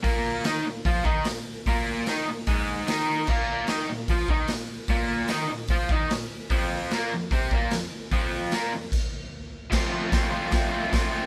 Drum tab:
CC |--------|--------|x-------|--------|
HH |o-o-o-o-|o-o-o-o-|--o-o-o-|o-o-o-o-|
SD |--o---o-|--o---o-|--o---o-|--o---o-|
BD |o---oo--|o---o---|o---oo--|o---oo--|

CC |--------|----x---|x-------|
HH |o-o-o-o-|o-o-----|--o-o-o-|
SD |--o---o-|--o-----|o-o-o-o-|
BD |o---oo--|o---o---|o-o-o-o-|